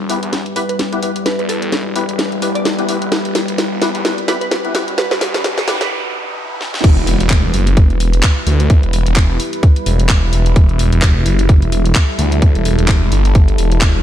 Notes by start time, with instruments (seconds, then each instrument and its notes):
Already playing: ambient pad G3 E4 B4, riser
0.00 detuned saw bass E1
0.10 synth stab B3 E4 G4 B4, open hi-hat
0.23 detuned saw bass E2, closed hi-hat
0.33 snare, closed hi-hat
0.46 closed hi-hat
0.56 synth stab B3 E4 G4 B4, synth pluck B4, open hi-hat
0.69 synth pluck B4, closed hi-hat
0.79 snare, closed hi-hat
0.93 synth stab B3 E4 G4 B4, closed hi-hat
1.03 synth stab B3 E4 G4 B4, open hi-hat
1.16 closed hi-hat
1.26 synth pluck B4, snare, closed hi-hat
1.39 detuned saw bass E2, synth pluck B4, closed hi-hat
1.49 synth pluck A4, open hi-hat
1.62 closed hi-hat
1.72 snare, closed hi-hat
1.86 detuned saw bass E1
1.96 synth stab B3 E4 G4 B4, open hi-hat
2.09 detuned saw bass E1, closed hi-hat
2.19 snare, closed hi-hat
2.32 closed hi-hat
2.42 detuned saw bass E1, synth stab B3 E4 G4 B4, open hi-hat
2.55 synth pluck D5, closed hi-hat
2.65 detuned saw bass E1, snare, closed hi-hat
2.79 synth stab B3 E4 G4 B4, closed hi-hat
2.89 detuned saw bass E1, synth stab B3 E4 G4 B4, open hi-hat
3.02 closed hi-hat
3.12 detuned saw bass E1, ambient pad F#4, snare, closed hi-hat
3.25 closed hi-hat
3.35 snare, open hi-hat
3.48 detuned saw bass G1, closed hi-hat
3.58 snare, closed hi-hat
3.72 detuned saw bass E1
3.82 synth stab B3 E4 G4 B4, snare, open hi-hat
3.95 detuned saw bass E2, closed hi-hat
4.05 snare, closed hi-hat
4.18 closed hi-hat
4.28 synth stab B3 E4 G4 B4, synth pluck B4, snare, open hi-hat
4.41 synth pluck B4, closed hi-hat
4.51 snare, closed hi-hat
4.65 synth stab B3 E4 G4 B4, closed hi-hat
4.75 synth stab B3 E4 G4 B4, snare, open hi-hat
4.88 closed hi-hat
4.98 synth pluck B4, snare, closed hi-hat, noise sweep
5.11 detuned saw bass E2, synth pluck B4, snare, closed hi-hat
5.21 snare, open hi-hat
5.34 snare, closed hi-hat
5.44 snare, closed hi-hat
5.58 snare
5.68 synth stab B3 E4 G4 B4, snare, open hi-hat
5.81 synth pluck B4, snare, closed hi-hat
6.61 snare
6.74 snare
6.84 detuned saw bass E1, ambient pad G3 E4 B4, kick, closed hi-hat, crash, impact
6.97 closed hi-hat
7.07 open hi-hat
7.20 detuned saw bass E1, closed hi-hat
7.30 kick, clap, closed hi-hat
7.54 detuned saw bass F#1, open hi-hat
7.67 closed hi-hat
7.77 kick, closed hi-hat
7.90 detuned saw bass E1, closed hi-hat
8.00 open hi-hat
8.13 closed hi-hat
8.23 kick, clap, closed hi-hat
8.47 detuned saw bass D2, open hi-hat
8.60 closed hi-hat
8.70 kick, closed hi-hat
8.83 detuned saw bass E1, closed hi-hat
8.93 open hi-hat
9.06 detuned saw bass E1, closed hi-hat
9.16 kick, clap, closed hi-hat
9.40 open hi-hat
9.53 closed hi-hat
9.63 kick, closed hi-hat
9.76 closed hi-hat
9.86 detuned saw bass E1, open hi-hat
10.00 closed hi-hat
10.09 kick, clap, closed hi-hat
10.33 detuned saw bass E1, open hi-hat
10.46 closed hi-hat
10.56 detuned saw bass E1, ambient pad A4, kick, closed hi-hat
10.69 closed hi-hat
10.79 open hi-hat
10.93 detuned saw bass E1, closed hi-hat
11.02 kick, clap, closed hi-hat
11.26 detuned saw bass F#1, open hi-hat
11.39 closed hi-hat
11.49 kick, closed hi-hat
11.62 detuned saw bass E1, closed hi-hat
11.72 open hi-hat
11.86 closed hi-hat
11.95 kick, clap, closed hi-hat
12.19 detuned saw bass D2, open hi-hat
12.32 closed hi-hat
12.42 kick, closed hi-hat
12.55 detuned saw bass E1, closed hi-hat
12.65 open hi-hat
12.79 detuned saw bass E1, closed hi-hat
12.88 kick, clap, closed hi-hat
13.12 detuned saw bass G1, open hi-hat
13.25 closed hi-hat
13.35 kick, closed hi-hat
13.48 closed hi-hat
13.58 detuned saw bass E1, open hi-hat
13.72 closed hi-hat
13.81 kick, clap, closed hi-hat
13.95 detuned saw bass E1